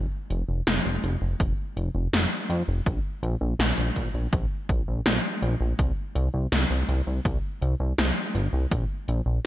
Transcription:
0.30 F1, closed hi-hat
0.49 F1
0.67 F1, snare, closed hi-hat
0.85 F1
1.03 F1, closed hi-hat
1.22 F1
1.40 F1, kick, closed hi-hat
1.76 F1, closed hi-hat
1.95 F1
2.13 F1, snare, closed hi-hat
2.50 F2, closed hi-hat
2.68 F1
2.86 A#1, kick, closed hi-hat
3.23 A#1, closed hi-hat
3.41 A#1
3.59 A#1, snare, closed hi-hat
3.78 A#1
3.96 A#1, kick, closed hi-hat
4.14 A#1
4.33 A#1, kick, closed hi-hat
4.69 A#1, kick, closed hi-hat
4.88 A#1
5.06 A#1, snare, closed hi-hat
5.42 A#1, closed hi-hat
5.61 A#1
5.79 C2, kick, closed hi-hat
6.15 C2, closed hi-hat
6.34 C2
6.52 C2, snare, closed hi-hat
6.70 C2
6.88 C2, closed hi-hat
7.07 C2
7.25 C2, kick, closed hi-hat
7.62 C2, closed hi-hat
7.80 C2
7.98 C2, snare, closed hi-hat
8.35 G1, closed hi-hat
8.53 C2
8.71 A#1, kick, closed hi-hat
9.08 A#1, closed hi-hat
9.26 A#1

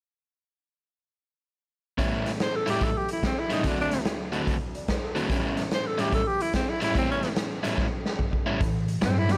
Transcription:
1.98 A2 E3 G3 B3 C#4 E4, kick, closed hi-hat
2.26 snare, closed hi-hat
2.40 C5, snare, closed hi-hat
2.56 A4
2.66 A2 G3 C#4 E4 G4, closed hi-hat
2.80 E3 F#3 A3 A4, kick, closed hi-hat
2.97 G4
3.08 E4, closed hi-hat
3.23 C4, kick, snare, closed hi-hat
3.39 E4
3.50 A2 G3 C#4 D#4 E4, closed hi-hat
3.62 D2 D3 F#3 A3 C4 F#4, kick, snare, closed hi-hat
3.67 D4 E4
3.81 D4
3.91 snare, closed hi-hat
4.05 snare, closed hi-hat
4.32 D3 A3 C4 F#4, closed hi-hat
4.47 kick, closed hi-hat
4.75 D5, closed hi-hat
4.88 C5, kick, snare, closed hi-hat
5.03 A4
5.15 D3 A3 C4 F#4, closed hi-hat
5.27 A2 E3 G3 B3 C#4 E4, kick, closed hi-hat
5.33 C#4
5.57 snare, closed hi-hat
5.71 C5, snare, closed hi-hat
5.87 A4
5.97 A2 E3 F#3 G3 A3 C#4 E4 G4, closed hi-hat
6.12 A4, kick, closed hi-hat
6.28 G4
6.40 E4, closed hi-hat
6.54 C4, kick, snare, closed hi-hat
6.69 E4
6.81 A2 G3 C#4 E4, snare, closed hi-hat
6.90 A2 E3
6.94 A2 G3 B3 C4 C#4 E4, kick, closed hi-hat
7.01 C#4
7.11 C#4
7.23 snare, closed hi-hat
7.36 snare, closed hi-hat
7.62 A2 F#3 G3 A3 C#4 E4, closed hi-hat
7.78 kick, snare
8.06 snare
8.19 kick, mid tom
8.33 kick
8.46 A2 G3 C#4 E4
8.60 A2 E3, kick, snare, closed hi-hat
8.88 closed hi-hat
9.01 G2 A2 F#3 C4, snare, closed hi-hat
9.18 E4
9.28 A2 F#3 G3 B3 C#4 F#4 G4, snare, closed hi-hat

